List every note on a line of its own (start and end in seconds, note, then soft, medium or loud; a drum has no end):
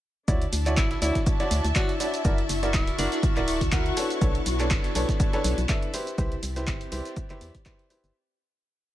0.28 0.46 D2 loud
0.28 2.94 D4 medium
0.28 8.16 E4 medium
0.28 0.42 E4 medium
0.28 0.42 F#4 medium
0.28 0.42 C#5 medium
0.28 0.42 D5 medium
0.28 8.16 A5 medium
0.28 kick loud
0.28 closed hi-hat medium
0.28 shaker medium
0.28 shaker soft
0.42 closed hi-hat soft
0.49 0.79 D2 medium
0.49 2.94 A5 medium
0.49 open hi-hat loud
0.49 shaker medium
0.53 shaker medium
0.66 0.99 E4 medium
0.66 0.99 F#4 medium
0.66 0.99 C#5 medium
0.66 0.99 D5 medium
0.66 clap soft
0.66 closed hi-hat medium
0.66 shaker soft
0.77 0.95 A1 loud
0.77 0.86 E4 medium
0.77 kick loud
0.77 snare loud
0.77 clap loud
0.77 closed hi-hat medium
0.77 shaker medium
0.77 shaker soft
0.91 0.98 E4 medium
0.91 snare medium
0.91 closed hi-hat soft
1.02 1.11 D2 loud
1.02 1.19 E4 medium
1.02 1.37 E4 medium
1.02 1.37 F#4 medium
1.02 1.37 C#5 medium
1.02 1.37 D5 medium
1.02 open hi-hat loud
1.02 shaker medium
1.15 2.94 E5 medium
1.15 kick medium
1.15 snare medium
1.15 closed hi-hat medium
1.15 shaker soft
1.26 kick loud
1.26 closed hi-hat medium
1.26 shaker medium
1.26 shaker soft
1.40 1.61 E4 loud
1.40 1.61 F#4 medium
1.40 1.61 C#5 medium
1.40 1.61 D5 loud
1.40 snare soft
1.40 closed hi-hat soft
1.51 1.61 D2 loud
1.51 open hi-hat loud
1.51 shaker medium
1.64 1.72 D2 medium
1.64 closed hi-hat medium
1.64 shaker soft
1.75 1.98 E4 medium
1.75 1.93 F#4 loud
1.75 1.98 F#4 medium
1.75 1.98 C#5 medium
1.75 1.98 D5 loud
1.75 kick loud
1.75 snare loud
1.75 clap loud
1.75 closed hi-hat medium
1.75 shaker medium
1.75 shaker soft
1.89 closed hi-hat soft
2.00 2.22 E4 medium
2.00 2.22 F#4 medium
2.00 2.22 C#5 medium
2.00 2.22 D5 medium
2.00 open hi-hat loud
2.00 shaker medium
2.14 closed hi-hat medium
2.14 shaker soft
2.25 2.43 F#1 loud
2.25 2.39 E4 medium
2.25 2.39 F#4 medium
2.25 5.94 F#4 medium
2.25 2.39 A#4 medium
2.25 2.39 D5 medium
2.25 kick loud
2.25 closed hi-hat medium
2.25 shaker medium
2.25 shaker soft
2.38 closed hi-hat soft
2.48 2.75 F#1 medium
2.48 5.94 C#6 medium
2.48 open hi-hat loud
2.48 shaker medium
2.63 2.96 E4 medium
2.63 2.96 F#4 medium
2.63 2.96 A#4 medium
2.63 2.96 D5 medium
2.63 snare medium
2.63 closed hi-hat medium
2.63 shaker soft
2.74 2.92 D1 loud
2.74 2.96 E4 medium
2.74 kick loud
2.74 snare loud
2.74 clap loud
2.74 closed hi-hat medium
2.74 shaker medium
2.74 shaker soft
2.87 closed hi-hat soft
2.98 3.08 F#1 loud
2.98 3.07 D4 medium
2.98 3.33 E4 medium
2.98 3.33 F#4 medium
2.98 3.33 A#4 medium
2.98 3.33 D5 medium
2.98 open hi-hat loud
2.98 shaker medium
3.03 4.76 F#5 medium
3.12 3.19 D4 medium
3.12 snare soft
3.12 closed hi-hat medium
3.12 shaker soft
3.23 kick loud
3.23 closed hi-hat medium
3.23 shaker medium
3.23 shaker soft
3.37 3.63 D1 medium
3.37 3.58 E4 loud
3.37 3.58 F#4 medium
3.37 3.58 A#4 medium
3.37 3.58 D5 loud
3.37 clap soft
3.37 closed hi-hat soft
3.48 open hi-hat loud
3.48 shaker medium
3.61 3.92 D2 medium
3.61 kick medium
3.61 closed hi-hat soft
3.61 closed hi-hat medium
3.61 shaker soft
3.72 3.94 E4 medium
3.72 3.94 F#4 medium
3.72 3.94 A#4 medium
3.72 3.94 F#5 loud
3.72 kick loud
3.72 snare loud
3.72 clap loud
3.72 closed hi-hat medium
3.72 shaker medium
3.72 shaker soft
3.86 closed hi-hat soft
3.97 5.94 B3 medium
3.97 4.19 D4 medium
3.97 4.19 A4 medium
3.97 4.19 B4 medium
3.97 4.19 C#5 medium
3.97 open hi-hat loud
3.97 shaker medium
4.10 closed hi-hat medium
4.10 shaker soft
4.21 4.40 B1 loud
4.21 4.36 D4 medium
4.21 4.36 A4 medium
4.21 4.36 B4 medium
4.21 4.36 C#5 loud
4.21 kick loud
4.21 closed hi-hat medium
4.21 shaker medium
4.21 shaker soft
4.35 closed hi-hat soft
4.46 4.72 B1 medium
4.46 open hi-hat loud
4.46 shaker medium
4.59 4.93 D4 medium
4.59 4.93 A4 medium
4.59 4.93 B4 medium
4.59 4.93 C#5 medium
4.59 clap soft
4.59 closed hi-hat medium
4.59 shaker soft
4.71 4.89 F#1 loud
4.71 kick loud
4.71 snare loud
4.71 clap loud
4.71 closed hi-hat medium
4.71 shaker medium
4.84 snare medium
4.84 closed hi-hat soft
4.95 5.05 B1 loud
4.95 5.30 D4 medium
4.95 5.30 A4 medium
4.95 5.30 B4 medium
4.95 5.30 C#5 loud
4.95 open hi-hat loud
4.95 shaker medium
5.09 kick medium
5.09 snare medium
5.09 closed hi-hat medium
5.09 shaker soft
5.20 kick loud
5.20 closed hi-hat medium
5.20 shaker medium
5.20 shaker soft
5.33 5.54 D4 loud
5.33 5.54 A4 medium
5.33 5.54 B4 medium
5.33 5.54 C#5 loud
5.33 snare soft
5.33 closed hi-hat soft
5.44 5.54 B1 loud
5.44 open hi-hat loud
5.44 shaker medium
5.58 5.66 B1 medium
5.58 closed hi-hat medium
5.58 shaker soft
5.69 5.91 D4 medium
5.69 5.91 A4 medium
5.69 5.91 B4 medium
5.69 5.91 E5 loud
5.69 kick loud
5.69 snare loud
5.69 clap loud
5.69 closed hi-hat medium
5.69 shaker medium
5.69 shaker soft
5.83 closed hi-hat soft
5.94 8.15 C4 medium
5.94 6.16 E4 medium
5.94 6.16 G4 medium
5.94 6.16 B4 medium
5.94 6.16 C5 medium
5.94 open hi-hat loud
5.94 shaker medium
6.07 closed hi-hat medium
6.07 shaker soft
6.18 6.36 C2 loud
6.18 6.33 E4 medium
6.18 6.33 G4 medium
6.18 6.33 B4 medium
6.18 6.33 C5 loud
6.18 kick loud
6.18 closed hi-hat medium
6.18 shaker medium
6.18 shaker soft
6.32 closed hi-hat soft
6.43 6.69 C2 medium
6.43 8.15 G4 medium
6.43 open hi-hat loud
6.43 shaker medium
6.56 6.89 E4 medium
6.56 6.89 G4 medium
6.56 6.89 B4 medium
6.56 6.89 C5 medium
6.56 snare soft
6.56 closed hi-hat medium
6.56 shaker soft
6.67 6.86 G1 loud
6.67 kick loud
6.67 snare loud
6.67 clap loud
6.67 closed hi-hat medium
6.67 shaker medium
6.67 shaker soft
6.81 closed hi-hat soft
6.92 7.02 C2 loud
6.92 7.27 E4 medium
6.92 7.27 G4 medium
6.92 7.27 B4 medium
6.92 7.27 C5 medium
6.92 8.15 D5 medium
6.92 open hi-hat loud
6.92 shaker medium
7.05 snare soft
7.05 closed hi-hat soft
7.05 shaker soft
7.16 kick loud
7.16 closed hi-hat medium
7.16 shaker medium
7.16 shaker soft
7.30 7.41 G1 medium
7.30 7.51 E4 loud
7.30 7.51 G4 medium
7.30 7.51 B4 medium
7.30 7.51 C5 loud
7.30 clap soft
7.30 closed hi-hat soft
7.41 7.51 E2 loud
7.41 open hi-hat loud
7.41 shaker medium
7.55 kick medium
7.55 closed hi-hat soft
7.55 shaker soft
7.66 7.88 E4 medium
7.66 7.88 G4 medium
7.66 7.88 B4 medium
7.66 7.88 C5 loud
7.66 kick loud
7.66 snare loud
7.66 clap loud
7.66 closed hi-hat medium
7.66 shaker medium
7.66 shaker soft
7.79 closed hi-hat soft
7.90 8.12 E4 medium
7.90 8.12 G4 medium
7.90 8.12 B4 medium
7.90 8.12 C5 medium
7.90 open hi-hat loud
7.90 shaker medium
8.04 8.12 G1 medium
8.04 closed hi-hat soft
8.04 shaker soft